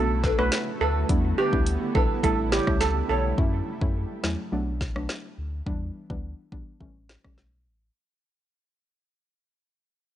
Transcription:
Already playing: B1 D3 A3 B3 D4 F#4
0.23 D4 A4 B4, kick, snare
0.38 B1 A3 B3 D4 F#4 B4, cross-stick
0.52 snare, closed hi-hat
0.80 D2 D4 A4 B4
1.09 E2 G3 B3 D4 E4, kick, closed hi-hat
1.38 D4 G4 B4
1.53 D2 G3 B3 D4 E4, kick
1.66 closed hi-hat
1.95 B1 G3 B3 D4 E4 G4 A4 B4, kick
2.23 A1 C#3 G3 A3 C#4 E4 A4, kick, closed hi-hat
2.52 E4 G4 C#5, snare
2.67 C#2 G3 A3 C#4 E4, kick, cross-stick
2.81 A4, snare, closed hi-hat
3.09 B1 E4 G4 A4 C#5
3.38 F#2 F#3 A3 C#4 E4, kick
3.81 F#2 F#3 A3 C#4 E4, kick
4.23 E2 F#3 A3 C#4 E4, snare
4.52 B1 F#3 A3 B3 D4
4.81 kick, snare
4.96 B1 F#3 A3 B3 D4, cross-stick
5.09 snare
5.38 D2
5.66 E2 E3 G3 B3 D4, kick
6.10 D2 E3 G3 B3 D4, kick
6.52 B1 E3 G3 B3 D4, kick
6.80 A1 E3 G3 A3 C#4, kick
7.09 snare
7.24 B1 E3 G3 A3 C#4, kick, cross-stick
7.38 snare
7.67 A1

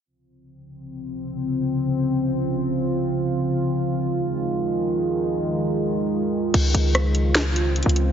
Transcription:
0.06 C#3 C4 F4
3.30 D#3 G#3
6.54 C#2 C#3 C4 F4, closed hi-hat, crash
6.74 C#2, closed hi-hat
6.95 cross-stick, closed hi-hat
7.15 closed hi-hat
7.35 snare, closed hi-hat
7.56 closed hi-hat
7.76 closed hi-hat
7.83 C#2, closed hi-hat
7.89 closed hi-hat
7.96 closed hi-hat

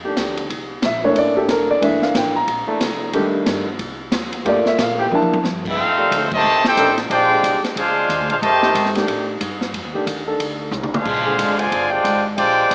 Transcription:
Already playing: F2
0.04 D#3 A3 D4 G4
0.16 D2, kick, snare, hi-hat pedal, ride
0.37 ride
0.50 C2, kick, ride
0.82 A#1 E5, kick, snare, hi-hat pedal, ride
1.03 E3 A3 A#3 D4 C#5
1.15 A1 D5, kick, ride
1.35 E3 D4 G4 A4
1.48 F1 A#4, kick, snare, hi-hat pedal, ride
1.71 D5
1.81 G1 E3 A3 A#3 D4 E5, kick, ride
2.02 F5, snare
2.14 A1 G5, kick, snare, hi-hat pedal, ride
2.36 A#5
2.47 A#1, kick, ride
2.67 E3 A3 A#3 D4, muted upright bass stroke
2.80 C2, kick, snare, hi-hat pedal, ride
3.13 F2 D#3 G3 A3 D4 G4, kick, ride
3.46 G2, kick, snare, hi-hat pedal, ride
3.79 C2, kick, ride
4.12 D#2, kick, snare, hi-hat pedal, ride
4.33 ride
4.45 G2 F3 A3 A#3 D4 F4 G4 D5, kick, ride
4.66 E5, snare
4.78 A#2, kick, snare, hi-hat pedal, ride
4.82 F5
4.98 E3 A#3 C4 G4 G5
5.11 C3 A#3 D4 E4, high tom
5.15 A5
5.22 high tom
5.31 muted upright bass stroke, high tom
5.44 G2, snare, hi-hat pedal
5.65 A3 C4 D#4 F4 A4 C5 F5, kick, crash
5.78 F2, kick
5.97 D#3 A3 G4 D5
6.11 D2, kick, hi-hat pedal, ride
6.31 C3 D#3 A3 G4 C5 D#5 A5, kick, crash
6.43 C2
6.64 C4 D#4 G4 A4 C5 G5, snare
6.77 A1 D#3 A3 D4 A4, kick, hi-hat pedal, ride
6.98 snare, ride
7.10 A#1 G#3 D4 F4 G4 C5 D5 G5, kick, ride
7.29 D3 G#3 C4 G4
7.43 C2, kick, hi-hat pedal, ride
7.63 muted upright bass stroke, snare, ride
7.76 D2 G#3 D4 F4 G#4 C5 F5, kick, ride
8.09 D#2, kick, hi-hat pedal, ride
8.20 D2
8.30 A#1 G#3 D4 F4 G#4 C5 F5, ride
8.42 F2 C3 D#3 A3 G4 C5 D#5 A5, kick, ride
8.62 D#3 A3 D#4 G4, snare
8.75 G#2, kick, hi-hat pedal, ride
8.86 snare
8.95 D#3 A3 D4 G4, snare, ride
9.08 A2, kick, ride
9.41 G2, kick, hi-hat pedal, ride
9.61 snare
9.74 F2, kick, ride
9.84 D#2
9.94 C2 D#3 A3 D4 G4
10.06 D#2, kick, hi-hat pedal, ride
10.26 D#3 A3 D4 A4
10.39 D2, kick, ride
10.71 C2, hi-hat pedal, mid tom
10.83 mid tom
10.94 G#3 D4 F4 G#4 C5 F5, mid tom
11.05 A#1, kick, crash
11.24 D3 G#3 C4 G#4
11.38 G#1, kick, hi-hat pedal, ride
11.57 D3 F3 G#3 F4 C5 D5 G#5, ride
11.72 G1, kick, ride
11.90 G#3 D4 F4 G4 C5 D5 G5
12.04 G#1, kick, hi-hat pedal, ride
12.37 A#1 G#3 D4 F4 G4 C5 D5 G5, kick, ride
12.71 C2, kick, hi-hat pedal, ride

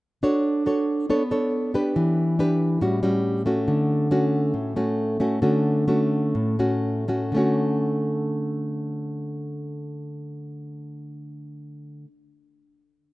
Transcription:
0.23 D4 F#4 A4 C#5
0.66 F#4 A4 C#5
1.10 B3 D4 A4 C#5
1.31 D4 A4 C#5
1.74 D4 G4 B4
1.96 E3
2.39 D4 G4 B4
2.81 A2 G3 C#4 F#4
3.03 G3 C#4 F#4
3.46 A3 C#4 F#4
3.68 D3
4.11 A3 C#4 F#4
4.54 A2
4.76 A3 C#4 F#4
5.20 A3 C#4 F#4
5.42 D3 A3 C#4 F#4
5.88 A3 C#4 F#4
6.35 A2
6.59 A3 C#4 F#4
7.08 A3 C#4 F#4
7.32 D3 A3
7.36 C#4 F#4

